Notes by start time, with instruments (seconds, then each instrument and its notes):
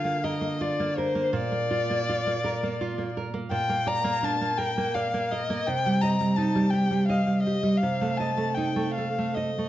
Already playing: nylon-string guitar D3 F4, violin F5
0.04 nylon-string guitar A#3
0.24 nylon-string guitar A#4, violin D#5
0.41 nylon-string guitar A#3
0.61 nylon-string guitar F4, violin D5
0.80 nylon-string guitar A#3
0.97 nylon-string guitar A#4, violin C5
1.15 nylon-string guitar A#3
1.33 nylon-string guitar A#2, violin D5
1.52 nylon-string guitar A#3
1.71 nylon-string guitar F4
1.90 nylon-string guitar A#3
2.09 nylon-string guitar F4
2.27 nylon-string guitar A#3
2.44 nylon-string guitar A#4
2.63 nylon-string guitar A#3
2.81 nylon-string guitar F4
2.98 nylon-string guitar A#3
3.17 nylon-string guitar A#4
3.34 nylon-string guitar A#3
3.51 nylon-string guitar A#2, violin G5
3.69 nylon-string guitar A#3
3.87 nylon-string guitar D5, violin A#5
4.04 nylon-string guitar A#3
4.23 nylon-string guitar D4, violin A5
4.41 nylon-string guitar A#3
4.57 nylon-string guitar A#4, violin G5
4.78 nylon-string guitar A#3
4.94 nylon-string guitar D5, violin F5
5.14 nylon-string guitar A#3
5.31 nylon-string guitar A#4, violin D#5
5.50 nylon-string guitar A#3
5.67 nylon-string guitar C3, violin G5
5.86 nylon-string guitar G3
6.01 nylon-string guitar D#5, violin A#5
6.21 nylon-string guitar G3
6.36 nylon-string guitar D#4, violin A5
6.55 nylon-string guitar G3
6.70 nylon-string guitar G4, violin G5
6.91 nylon-string guitar G3
7.08 nylon-string guitar D#5, violin F5
7.27 nylon-string guitar G3
7.43 nylon-string guitar G4, violin D#5
7.63 nylon-string guitar G3
7.77 violin F5
7.83 nylon-string guitar C3
8.01 nylon-string guitar A3
8.17 nylon-string guitar D#5, violin A5
8.37 nylon-string guitar A3
8.54 nylon-string guitar D#4, violin G5
8.76 nylon-string guitar A3
8.94 nylon-string guitar A4, violin F5
9.18 nylon-string guitar A3
9.35 violin D#5, nylon-string guitar D#5
9.58 nylon-string guitar A3